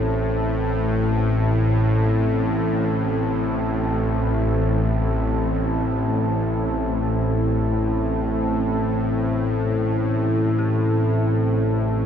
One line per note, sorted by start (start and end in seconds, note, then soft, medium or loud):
0.00 12.06 A1 medium
0.00 12.06 A2 medium
0.00 12.06 C4 medium
0.00 12.06 E4 medium
0.00 12.06 A4 medium
0.00 12.06 E5 medium
10.59 12.06 G4 medium